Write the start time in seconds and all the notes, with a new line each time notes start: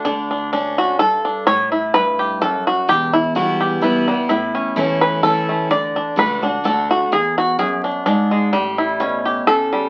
0.05 D2 D3 D4
0.31 D4
0.53 C#4 D4
0.78 F#4
0.99 G2 A4
1.25 D4
1.47 A1 A2 C#5
1.72 E4
1.94 G2 B4
2.19 G4
2.42 F#2 A4
2.67 F#4
2.88 E1 E2 G4
3.13 E4
3.35 E3 G3 B3 E4 F#4
3.60 G4
3.82 E3 G3 B3 E4
4.08 G3 B3 E4
4.29 A1 A2 E4
4.55 C#4
4.76 E3 A3 C#4 E4
5.01 B4
5.23 E3 A3 C#4 E4 A4
5.49 A3
5.70 D2 D3 D5
5.96 D4
6.16 C#2 D3 A3 D4 F#4 B4
6.42 D4 F#4
6.64 D2 D3 A3 D4 F#4 A4
6.91 F#4
7.11 E2 G#4
7.38 F#4
7.59 F#2 G#4
7.84 D4
8.06 G#2 D4
8.31 G#3
8.53 A1 A2 G3
8.78 E4
9.00 B2 C#4
9.25 G4
9.47 C#3 A4
9.73 G3